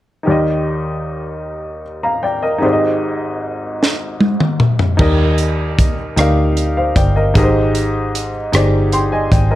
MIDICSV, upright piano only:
0, 0, Header, 1, 2, 480
1, 0, Start_track
1, 0, Key_signature, -3, "major"
1, 0, Tempo, 786370
1, 167, Time_signature, 6, 3, 24, 8
1, 5831, End_track
2, 0, Start_track
2, 0, Title_t, "Upright piano"
2, 0, Program_c, 0, 0
2, 142, Note_on_c, 0, 63, 43
2, 153, Note_on_c, 0, 67, 41
2, 163, Note_on_c, 0, 70, 39
2, 165, Note_on_c, 0, 51, 45
2, 166, Note_on_c, 0, 39, 42
2, 176, Note_on_c, 0, 74, 37
2, 189, Note_on_c, 0, 75, 49
2, 271, Control_c, 0, 64, 127
2, 1107, Note_off_c, 0, 70, 0
2, 1113, Note_off_c, 0, 74, 0
2, 1120, Note_off_c, 0, 75, 0
2, 1241, Note_on_c, 0, 82, 39
2, 1248, Note_on_c, 0, 77, 36
2, 1359, Note_off_c, 0, 82, 0
2, 1360, Note_on_c, 0, 79, 41
2, 1362, Note_off_c, 0, 77, 0
2, 1367, Note_on_c, 0, 74, 37
2, 1478, Note_off_c, 0, 79, 0
2, 1480, Note_on_c, 0, 75, 43
2, 1481, Note_off_c, 0, 74, 0
2, 1485, Note_on_c, 0, 70, 37
2, 1568, Note_off_c, 0, 63, 0
2, 1577, Note_off_c, 0, 67, 0
2, 1577, Note_on_c, 0, 63, 50
2, 1583, Note_off_c, 0, 39, 0
2, 1583, Note_off_c, 0, 51, 0
2, 1588, Note_on_c, 0, 67, 45
2, 1599, Note_on_c, 0, 32, 46
2, 1600, Note_on_c, 0, 44, 45
2, 1602, Note_on_c, 0, 68, 41
2, 1614, Note_on_c, 0, 72, 43
2, 1616, Control_c, 0, 64, 0
2, 1625, Note_on_c, 0, 74, 40
2, 1655, Note_off_c, 0, 75, 0
2, 1656, Note_off_c, 0, 74, 0
2, 1664, Note_on_c, 0, 75, 49
2, 1715, Note_off_c, 0, 70, 0
2, 1726, Control_c, 0, 64, 127
2, 3008, Note_off_c, 0, 63, 0
2, 3014, Note_off_c, 0, 67, 0
2, 3019, Note_off_c, 0, 32, 0
2, 3020, Note_off_c, 0, 44, 0
2, 3021, Note_off_c, 0, 68, 0
2, 3027, Note_off_c, 0, 72, 0
2, 3034, Note_on_c, 0, 63, 64
2, 3043, Note_on_c, 0, 67, 56
2, 3047, Note_on_c, 0, 51, 49
2, 3050, Note_on_c, 0, 70, 57
2, 3052, Note_off_c, 0, 75, 0
2, 3056, Note_on_c, 0, 74, 58
2, 3057, Control_c, 0, 64, 0
2, 3061, Note_on_c, 0, 75, 65
2, 3148, Control_c, 0, 64, 127
2, 3622, Note_off_c, 0, 63, 0
2, 3626, Note_off_c, 0, 67, 0
2, 3630, Note_off_c, 0, 70, 0
2, 3632, Note_off_c, 0, 74, 0
2, 3635, Note_off_c, 0, 75, 0
2, 3743, Note_off_c, 0, 51, 0
2, 3762, Note_on_c, 0, 63, 59
2, 3766, Note_on_c, 0, 67, 53
2, 3774, Note_on_c, 0, 70, 52
2, 3778, Note_on_c, 0, 74, 51
2, 3784, Note_on_c, 0, 77, 62
2, 4011, Note_off_c, 0, 70, 0
2, 4013, Note_off_c, 0, 74, 0
2, 4015, Note_off_c, 0, 77, 0
2, 4133, Note_on_c, 0, 77, 46
2, 4135, Note_on_c, 0, 72, 37
2, 4244, Note_off_c, 0, 77, 0
2, 4245, Note_off_c, 0, 72, 0
2, 4248, Note_on_c, 0, 79, 51
2, 4249, Note_on_c, 0, 74, 40
2, 4345, Note_off_c, 0, 63, 0
2, 4347, Note_off_c, 0, 67, 0
2, 4361, Note_off_c, 0, 79, 0
2, 4362, Note_off_c, 0, 74, 0
2, 4370, Note_on_c, 0, 75, 49
2, 4375, Note_on_c, 0, 70, 38
2, 4480, Note_on_c, 0, 63, 67
2, 4488, Note_off_c, 0, 70, 0
2, 4488, Note_on_c, 0, 67, 63
2, 4491, Note_on_c, 0, 68, 64
2, 4493, Note_off_c, 0, 75, 0
2, 4494, Control_c, 0, 64, 0
2, 4494, Note_on_c, 0, 44, 51
2, 4498, Note_on_c, 0, 70, 45
2, 4502, Note_on_c, 0, 75, 71
2, 4532, Note_off_c, 0, 70, 0
2, 4537, Note_on_c, 0, 72, 64
2, 4618, Control_c, 0, 64, 127
2, 5063, Note_off_c, 0, 63, 0
2, 5067, Note_off_c, 0, 67, 0
2, 5069, Note_off_c, 0, 68, 0
2, 5074, Note_off_c, 0, 75, 0
2, 5092, Note_off_c, 0, 72, 0
2, 5184, Note_off_c, 0, 44, 0
2, 5203, Note_on_c, 0, 63, 58
2, 5208, Note_on_c, 0, 67, 50
2, 5213, Note_on_c, 0, 68, 52
2, 5218, Note_on_c, 0, 72, 50
2, 5226, Note_on_c, 0, 74, 64
2, 5451, Note_off_c, 0, 72, 0
2, 5452, Note_on_c, 0, 84, 51
2, 5453, Note_on_c, 0, 79, 45
2, 5455, Note_off_c, 0, 74, 0
2, 5562, Note_off_c, 0, 84, 0
2, 5563, Note_off_c, 0, 79, 0
2, 5568, Note_on_c, 0, 80, 50
2, 5573, Note_on_c, 0, 75, 45
2, 5680, Note_off_c, 0, 80, 0
2, 5683, Note_off_c, 0, 75, 0
2, 5687, Note_on_c, 0, 79, 49
2, 5691, Note_on_c, 0, 74, 40
2, 5784, Note_off_c, 0, 63, 0
2, 5787, Note_off_c, 0, 67, 0
2, 5789, Note_off_c, 0, 68, 0
2, 5800, Note_off_c, 0, 79, 0
2, 5802, Note_off_c, 0, 74, 0
2, 5803, Note_on_c, 0, 75, 47
2, 5806, Note_on_c, 0, 70, 43
2, 5831, Note_off_c, 0, 70, 0
2, 5831, Note_off_c, 0, 75, 0
2, 5831, End_track
0, 0, End_of_file